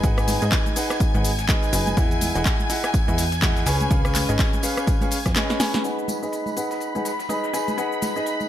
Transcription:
Already playing: G#5 G#6
0.03 G#1 D#4 G#4 B4 F#5, kick, closed hi-hat, tambourine, shaker
0.17 cross-stick, closed hi-hat, tambourine, shaker
0.28 snare, open hi-hat, tambourine, high conga, shaker
0.42 G#2 D#4 G#4 B4 D#5, closed hi-hat, tambourine, shaker
0.52 kick, snare, clap, closed hi-hat, tambourine, shaker
0.66 closed hi-hat, high conga, shaker
0.76 D#4 G#4 B4 F#5, closed hi-hat, open hi-hat, tambourine, shaker
0.90 cross-stick, snare, closed hi-hat, tambourine, shaker
1.00 kick, closed hi-hat, tambourine, shaker
1.14 G#1 D#4 G#4 B4 F#5, closed hi-hat, high conga, shaker
1.24 closed hi-hat, open hi-hat, tambourine, shaker
1.39 snare, closed hi-hat, tambourine, shaker
1.48 D#4 G#4 B4 D#5, kick, snare, clap, closed hi-hat, tambourine, high conga, shaker
1.62 closed hi-hat, tambourine, shaker
1.73 F#1 D#4 G#4 B4 G#5, closed hi-hat, open hi-hat, tambourine, shaker
1.87 closed hi-hat, tambourine, high conga, shaker
1.97 E2 E4 G#4 D#5 F#5, kick, closed hi-hat, tambourine, shaker
2.11 closed hi-hat, tambourine, shaker
2.21 closed hi-hat, open hi-hat, tambourine, high conga, shaker
2.35 E1 E4 G#4 D#5 F#5, closed hi-hat, tambourine, shaker
2.45 kick, snare, clap, closed hi-hat, tambourine, shaker
2.60 closed hi-hat, high conga, shaker
2.70 E4 G#4 D#5 F#5, closed hi-hat, open hi-hat, tambourine, shaker
2.84 cross-stick, snare, closed hi-hat, tambourine, shaker
2.94 kick, closed hi-hat, tambourine, shaker
3.07 E2 E4 G#4 D#5 F#5, closed hi-hat, high conga, shaker
3.18 snare, closed hi-hat, open hi-hat, tambourine, shaker
3.32 snare, closed hi-hat, tambourine, shaker
3.42 E4 G#4 D#5 F#5, kick, snare, clap, closed hi-hat, tambourine, high conga, shaker
3.56 snare, closed hi-hat, tambourine, shaker
3.66 C#2 C#4 G#4 B4 G#5, snare, closed hi-hat, open hi-hat, tambourine, shaker
3.80 closed hi-hat, tambourine, high conga, shaker
3.91 C#2 C#4 G#4 B4 F5, kick, closed hi-hat, tambourine, shaker
4.05 cross-stick, closed hi-hat, tambourine, shaker
4.15 snare, clap, open hi-hat, tambourine, high conga, shaker
4.29 G#1 C#4 G#4 B4 D#5, closed hi-hat, tambourine, shaker
4.39 kick, snare, clap, closed hi-hat, tambourine, shaker
4.53 closed hi-hat, tambourine, high conga, shaker
4.63 C#4 G#4 B4 F5, open hi-hat, tambourine, shaker
4.77 cross-stick, closed hi-hat, tambourine, shaker
4.87 kick, closed hi-hat, tambourine, shaker
5.01 C#4 G#4 B4 F5, closed hi-hat, tambourine, high conga, shaker
5.11 closed hi-hat, open hi-hat, tambourine, shaker
5.26 F2, kick, cross-stick, snare, closed hi-hat, tambourine, shaker
5.36 C#4 G#4 B4 D#5, snare, clap, closed hi-hat, tambourine, high conga, shaker
5.49 snare, closed hi-hat, tambourine, shaker
5.60 C#4 G#4 B4 G#5, snare, closed hi-hat, open hi-hat, tambourine, shaker
5.74 snare, closed hi-hat, tambourine, high conga, shaker
5.84 D#4 G#4 B4 F#5 B5 B6, closed hi-hat, tambourine, shaker
5.98 closed hi-hat, shaker
6.08 closed hi-hat, tambourine, high conga, shaker
6.23 D#4 G#4 B4 D#5, tambourine, shaker
6.33 closed hi-hat, tambourine, shaker
6.46 tambourine, high conga, shaker
6.57 D#4 G#4 B4 F#5, closed hi-hat, tambourine, shaker
6.71 snare, tambourine, shaker
6.80 closed hi-hat, tambourine, shaker
6.95 D#4 G#4 B4 F#5, tambourine, high conga, shaker
7.05 snare, closed hi-hat, tambourine, shaker
7.19 snare, tambourine, shaker
7.29 D#4 G#4 B4 D#5, closed hi-hat, tambourine, high conga, shaker
7.44 snare, shaker
7.54 D#4 G#4 B4 G#5, snare, closed hi-hat, tambourine, shaker
7.68 closed hi-hat, tambourine, high conga, shaker
7.78 D#4 G#4 B4 F#5, closed hi-hat, tambourine, shaker
7.92 shaker
8.02 snare, open hi-hat, tambourine, high conga, shaker
8.15 D#4 G#4 B4 D#5, tambourine, shaker
8.26 closed hi-hat, tambourine, shaker
8.40 tambourine, high conga, shaker

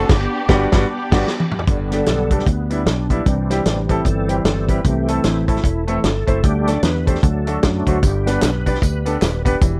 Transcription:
Already playing: F#5 D6
0.09 G1 B3 D4 G4 B5, kick, snare, crash
0.48 G1 G3 B3 D4 F#4 G4, kick, snare
0.72 G1 G3 B3 D4 F#4, kick, snare
0.88 B3 D4 G4
1.11 G1 G3 B3 D4 F#4, kick, snare, crash
1.28 snare
1.40 high tom
1.52 mid tom
1.59 floor tom
1.67 G1 G2 D3 G3 B3 D4 G4, kick, closed hi-hat
1.91 G3 B3 D4 G4 A4, snare, closed hi-hat
2.06 B1, snare, closed hi-hat
2.31 D3 G3 B3 D4 G4 A4, kick, closed hi-hat
2.39 snare
2.46 D2 B3, kick, closed hi-hat
2.70 G3 B3 D4 E4, closed hi-hat
2.86 B1 D4, snare, closed hi-hat
3.10 G3 B3 D4 E4, kick, closed hi-hat
3.25 C2 C3 E3 G3 C4 E4, kick, closed hi-hat
3.50 G3 C4 E4 G4, snare, closed hi-hat
3.65 A1, snare, closed hi-hat
3.89 G3 C4 E4 A4, kick, closed hi-hat
4.05 G1 A4, kick, closed hi-hat
4.28 G3 C4 E4 G4, closed hi-hat
4.45 G1 A4, snare, closed hi-hat
4.68 G3 C4 E4 G4 B4, kick, closed hi-hat
4.84 C2 C3 E3 A3 C4 G4 A4, kick, closed hi-hat
5.08 A3 C4 E4 A4, closed hi-hat
5.24 A1 E4, snare, closed hi-hat
5.48 A3 C4 E4 A4, kick, closed hi-hat
5.56 snare
5.64 E1, kick, closed hi-hat
5.88 E3 A3 C4 E4 A4, closed hi-hat
6.04 G1 A4, snare, closed hi-hat
6.27 F#1 A3 C4 E4 C5, kick, closed hi-hat
6.42 D2 D3 G3 A3 D4 G4, kick, closed hi-hat
6.67 A3 D4 G4 A4 D5, snare, closed hi-hat
6.83 E2 B4, snare, closed hi-hat
7.07 A3 D4 G4 A4 C5, kick, closed hi-hat
7.15 snare
7.23 D2 D3 F#3 A3 D4 F#4, kick, closed hi-hat
7.47 A3 D4 F#4 A4, closed hi-hat
7.63 F#2, kick, snare, closed hi-hat
7.87 D2 A3 D4 F#4 C5, kick, closed hi-hat
8.03 G1 G2 G3 B3 D4 G4, kick, closed hi-hat, tambourine
8.26 G3 B3 D4 G4 B4, snare, closed hi-hat, tambourine
8.42 B1, snare, clap, closed hi-hat, tambourine
8.66 B3 D4 G4 B4 D5, kick, closed hi-hat, tambourine
8.75 snare
8.82 D2 B4, kick, closed hi-hat, tambourine
9.05 B3 D4 G4 A4, closed hi-hat, tambourine
9.22 D#1, snare, clap, closed hi-hat, tambourine
9.45 B3 D4 G4 B4, kick, closed hi-hat, tambourine
9.61 E1 E3 E4, kick, closed hi-hat, tambourine

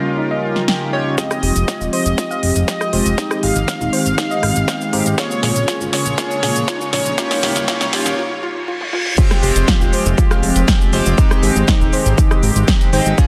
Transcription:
Already playing: C#3 G3 A#3 C#4 D#4 F4 G4 A#4
0.18 D#4
0.31 D#5
0.56 snare
0.68 C#4 D#4 G4 A#4 G5, snare
0.93 C#4 D#4 G4 C#5
1.18 F3 G#3 C4 F4 G4 D#5, kick, snare, closed hi-hat, riser, shaker
1.31 cross-stick, shaker
1.43 F1 G4, open hi-hat
1.56 F1, closed hi-hat, shaker
1.68 F4, kick, snare, closed hi-hat, shaker
1.81 D#1 F4, shaker
1.93 C5 D#5, open hi-hat
2.06 F1, closed hi-hat, shaker
2.18 F4, kick, snare, closed hi-hat, shaker
2.31 F5, shaker
2.43 F1, open hi-hat
2.56 F1, closed hi-hat, shaker
2.68 D#5 G5, kick, snare, closed hi-hat, shaker
2.81 cross-stick, shaker
2.93 F1 G#3 C4 F4 G4 C5, open hi-hat
3.06 F1, closed hi-hat, shaker
3.18 D#3 G#3 C4 D#4 G4, kick, snare, closed hi-hat, shaker
3.31 cross-stick, shaker
3.43 G#1 G4 F5, open hi-hat
3.56 G#1, closed hi-hat, shaker
3.68 D#4, kick, snare, closed hi-hat, shaker
3.81 D#1 D#4, shaker
3.93 C5, open hi-hat
4.06 G#1, closed hi-hat, shaker
4.18 D#4, kick, snare, closed hi-hat, shaker
4.31 D#5, shaker
4.43 G#1, cross-stick, open hi-hat
4.56 G#1, closed hi-hat, shaker
4.68 G5, kick, snare, closed hi-hat, shaker
4.81 shaker
4.93 G#1 G#3 C4 D#4 G4 C5, open hi-hat
5.06 G#1, closed hi-hat, shaker
5.18 C#3 A#3 C#4 F4 G#4 C#5, kick, snare, closed hi-hat, shaker
5.31 shaker
5.43 A#1 G#4, snare, open hi-hat
5.56 A#1, closed hi-hat, shaker
5.68 F4, kick, snare, closed hi-hat, shaker
5.81 G#1 F4, shaker
5.93 C#5, snare, open hi-hat
6.06 A#1, closed hi-hat, shaker
6.18 A#3 C#4 F4 G#4 C#5, kick, snare, closed hi-hat, shaker
6.31 shaker
6.43 A#1 G#4, snare, open hi-hat
6.56 A#1, closed hi-hat, shaker
6.68 F4, kick, snare, closed hi-hat, shaker
6.81 F4, shaker
6.93 A#1 C#5, snare, open hi-hat
7.06 A#1, closed hi-hat, shaker
7.18 C#3 G3 A#3 C#4 D#4 F4 G4 C#5, kick, snare, closed hi-hat, shaker
7.31 snare, open hi-hat, shaker
7.43 D#1 G4, snare, open hi-hat
7.56 D#1, snare, closed hi-hat, shaker
7.68 A#3 C#4 F4 G4 C#5, kick, snare, closed hi-hat, shaker
7.81 C#2, snare, shaker
7.93 G4, snare, open hi-hat
8.06 D#1, snare, closed hi-hat, shaker
8.18 F4, reverse cymbal
8.43 F4
8.68 F4
8.81 high tom
8.93 F4, mid tom
9.06 mid tom
9.18 F3 G#3 C4 F4 G4, kick, closed hi-hat, crash, shaker
9.31 cross-stick, snare, shaker
9.43 F1 G4, open hi-hat, shaker
9.56 F1, closed hi-hat, shaker
9.68 F4, kick, snare, closed hi-hat, shaker
9.81 D#1 F4, shaker
9.93 C5, open hi-hat, shaker
10.06 F1, closed hi-hat, shaker
10.18 F4, kick, closed hi-hat, shaker
10.31 F5, cross-stick, snare, shaker
10.43 F1, open hi-hat, shaker
10.56 F1, closed hi-hat, shaker
10.68 G5, kick, snare, closed hi-hat, shaker
10.81 shaker
10.93 F1 G#3 C4 F4 G4 C5, open hi-hat, shaker
11.06 F1, closed hi-hat, shaker
11.18 D#3 G#3 C4 D#4 G4, kick, closed hi-hat, shaker
11.31 cross-stick, shaker
11.43 G#1 G4, snare, open hi-hat, shaker
11.56 G#1, closed hi-hat, shaker
11.68 D#4, kick, snare, closed hi-hat, shaker
11.81 D#1 D#4, shaker
11.93 C5, open hi-hat, shaker
12.06 G#1, snare, closed hi-hat, shaker
12.18 D#4, kick, closed hi-hat, shaker
12.31 D#5, cross-stick, shaker
12.43 G#1, open hi-hat, shaker
12.56 G#1, closed hi-hat, shaker
12.68 G5, kick, snare, closed hi-hat, shaker
12.81 closed hi-hat, shaker
12.93 G#1 G#3 C4 D#4 G4 C5, open hi-hat, shaker
13.06 G#1, closed hi-hat, shaker
13.18 C#3 A#3 C#4 F4 G#4, kick, closed hi-hat, shaker

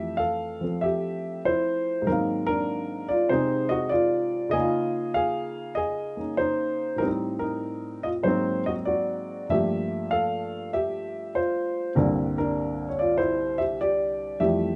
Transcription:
Already playing: F2 E3 A3 G4 E5
0.17 A4 F5
0.61 F3 C4 A4
0.81 G4 E5
1.45 E4 C5
2.02 G#2 D#3
2.06 F#3 A#3 D#4 A#4
2.11 C4 F5
2.47 D4 A#4
3.09 F4 D5
3.29 C3 G#3 C4 D#4 C5
3.34 G#4
3.69 F#4 D#5
3.89 F4 D5
4.49 C#3 A#3 G#4 D#5
4.56 D#4 F4
5.14 G#4 F5
5.75 G#4 D#5
6.17 A#3 C#4 D#4
6.37 D#4 C5
6.96 A2 G3 D#4 A#4
7.03 C4
7.07 D#4
7.39 D#4 A#4
8.03 F4 D#5
8.23 G#2 F#3 A#3 D#4 C5
8.28 C4
8.66 F#4 D#5
8.85 F#4 D5
9.49 G2 F3 A3 A#3 G4 E5
10.11 A4 F5
10.73 G4 E5
11.35 F4 C5
11.95 C2 G2 D3 G3 A#3 C4 D4 A#4
12.38 D4 A#4
12.89 C#5
12.99 F4 D5
13.18 E4 C5
13.58 G4 E5
13.81 G4 D5
14.40 F2 E3 G3 A3 G4 E5

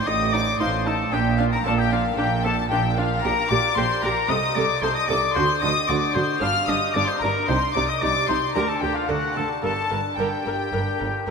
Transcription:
0.05 A1 A2 A3 D#4 D#5 D#6
0.33 D#4 D5 D6
0.59 A1 A2 C4 D#4 F4 C5 C6
0.85 D#4 A4 A5
1.11 A#1 A#2 D4 G4 G5
1.38 D4 F4 F5
1.52 A#4 A#5
1.65 A#1 A#2 A#3 D4 F4 A4 A5
1.78 G4 G5
1.91 D4 F4 F5
2.18 A#1 A#2 D4 G4 G5
2.44 D4 A4 A5
2.71 A#1 A#2 A#3 D4 F4 G4 G5
2.98 D4 F4 F5
3.24 A#1 A#2 G4 A#4 A#5
3.49 A#1 A#2 G4 D5 D6
3.77 A#1 A#2 D4 G4 C5 C6
4.03 A#1 A#2 G4 A#4 A#5
4.29 C2 C3 A4 D#5 D#6
4.55 C2 C3 A4 D5 D6
4.82 C2 C3 D#4 A4 C5 C6
4.95 D#5 D#6
5.08 C2 C3 A4 D5 D6
5.35 D2 D3 F#4 C5 C6
5.62 D2 D3 F#4 D#5 D#6
5.88 D2 D3 D4 F#4 D5 D6
6.13 D2 D3 F#4 C5 C6
6.41 G1 G2 D4 F5 F6
6.68 G1 G2 D4 D#5 D#6
6.94 G1 G2 D4 G4 D5 D6
7.07 C5 C6
7.19 G1 G2 D4 A#4 A#5
7.47 C2 C3 D#4 C5 C6
7.74 C2 C3 D#4 D5 D6
7.88 D#5 D#6
8.00 C2 C3 D#4 G4 D5 D6
8.28 C2 C3 D#4 C5 C6
8.54 D2 D3 A#3 D4 G4 A#4 A#5
8.68 A4 A5
8.81 D2 D3 G4 G5
8.94 F4 F5
9.08 D2 D3 A3 D4 F#4 A4 F#5
9.35 D2 D3 A4 A5
9.62 G1 G2 A4 A#4 A5
9.91 G1 G2 A#4
10.17 G1 G2 A#3 D4 G4 A#4 G5
10.45 G1 G2 A#4
10.72 G1 G2 A#3 A#4
11.00 G1 G2 A#4
11.27 G1 G2 A#3 A#4

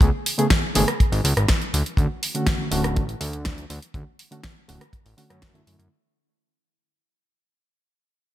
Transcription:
0.01 C#2 C#3 A3 B3 G#4, kick, closed hi-hat
0.26 open hi-hat
0.38 C#3 A3 B3 G#4, closed hi-hat
0.50 kick, snare, closed hi-hat
0.75 G#1 C#3 A3 B3 G#4, open hi-hat
0.88 cross-stick, closed hi-hat
1.00 kick, closed hi-hat
1.12 G#1, open hi-hat
1.24 C#2, open hi-hat
1.37 G#1, cross-stick, closed hi-hat
1.48 kick, snare, closed hi-hat
1.62 closed hi-hat
1.74 D2, open hi-hat
1.86 closed hi-hat
1.97 D2 D3 A3 C#4 F#4, kick, closed hi-hat
2.23 open hi-hat
2.35 D3 A3 C#4 F#4, closed hi-hat
2.47 kick, snare, closed hi-hat
2.71 D1 D3 A3 C#4 F#4, open hi-hat
2.84 cross-stick, closed hi-hat
2.95 A1 D3 A3 C#4 F#4, kick, closed hi-hat
3.09 closed hi-hat
3.21 D2, open hi-hat
3.33 closed hi-hat
3.45 kick, snare, closed hi-hat
3.58 closed hi-hat
3.70 D2, open hi-hat
3.82 closed hi-hat
3.94 D2 D3 A3 C#4 F#4, kick, closed hi-hat
4.19 open hi-hat
4.31 D3 A3 C#4 F#4, closed hi-hat
4.44 kick, snare, closed hi-hat
4.68 D1 D3 A3 C#4 F#4, open hi-hat
4.81 cross-stick, closed hi-hat
4.93 kick, closed hi-hat
5.06 A1, open hi-hat
5.17 D3 A3 C#4 F#4, open hi-hat
5.30 F#2, cross-stick, closed hi-hat
5.42 kick, snare, closed hi-hat
5.54 D3 A3 C#4 E4, closed hi-hat
5.67 F#2, open hi-hat
5.79 F#2, closed hi-hat

